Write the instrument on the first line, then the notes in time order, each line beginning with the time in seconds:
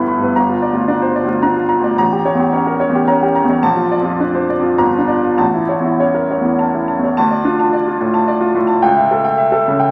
upright piano
Already playing: G1 G2 B3 E4 A4 B4 B5
0.08 B5
0.19 G2 B4
0.36 G1 A#5
0.49 F4
0.62 D5
0.71 D2 F4
0.88 D4 D5
1.02 C5
1.15 D5
1.24 D2 F4
1.42 D4 A#5
1.56 F4
1.69 A#5
1.79 D2
1.84 D5
1.98 A1 A#5
2.13 G4
2.25 C#5
2.35 E2
2.40 G4
2.53 C#4 C#5
2.67 A#4
2.80 C#5
2.89 E2
2.95 G4
3.08 C#4 A#5
3.22 G4
3.35 A#5
3.44 E2
3.49 C#5
3.63 A#1 A5
3.76 F4
3.92 D5
4.01 F2
4.05 F4
4.20 D4 D5
4.35 C5
4.49 D5
4.59 F2 F4
4.78 G1 A#5
4.93 F4
4.98 D4
5.08 D5
5.22 F4
5.38 A1 A5
5.54 E4
5.69 C#5
5.79 E2
5.85 E4
6.00 C#4 C#5
6.14 A#4
6.31 C#5
6.41 E2 E4
6.59 C#4 A5
6.74 E4
6.88 A5
6.99 E2
7.04 C#5
7.17 D2 A5
7.31 D5
7.44 D4 F4
7.60 A5
7.73 D5
7.88 F4
8.00 A2
8.14 A5
8.28 D5
8.40 F4
8.55 A2
8.67 A5
8.82 C#2 G5
8.97 E5
9.11 A4
9.24 G5
9.38 E5
9.52 A4
9.68 C#3
9.80 G5